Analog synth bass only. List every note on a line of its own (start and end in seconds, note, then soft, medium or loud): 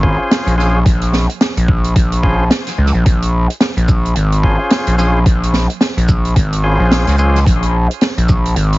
0.00 0.17 G#1 loud
0.47 0.84 A#1 medium
0.86 1.27 A#1 medium
1.57 1.94 A#1 loud
1.96 2.49 A#1 medium
2.78 2.92 C#2 medium
2.94 3.04 A#1 loud
3.06 3.47 A#1 loud
3.77 4.14 A#1 loud
4.16 4.57 G#1 medium
4.87 5.24 A#1 medium
5.26 5.67 A#1 loud
5.97 6.34 A#1 loud
6.36 6.78 G#1 loud
6.80 7.05 A#1 medium
7.07 7.44 C#2 loud
7.46 7.88 A#1 medium
8.18 8.55 A#1 medium
8.56 8.78 G#1 loud